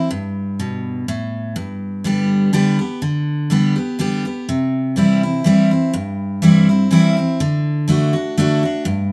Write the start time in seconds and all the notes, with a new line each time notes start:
Already playing: C4
0.11 G2
0.59 B2
1.08 A2
1.56 G2
2.04 D3 G3 B3 G4
2.53 D3 G3 B3 G4
2.79 B3 G4
3.02 D3
3.50 D3 G3 B3 G4
3.76 B3 G4
3.99 D3 G3 B3 G4
4.25 B3 G4
4.49 C3
4.96 E3 G3 C4 E4
5.23 C4 E4
5.44 E3 G3 C4 E4
5.71 C4 E4
5.93 G2
6.42 E3 G3 C4 E4
6.69 C4 E4
6.91 E3 G3 C4 E4
7.17 C4 E4
7.40 D3
7.88 D3 A3 D4 F#4
8.13 D4 F#4
8.37 D3 A3 D4 F#4
8.63 D4 F#4
8.85 G2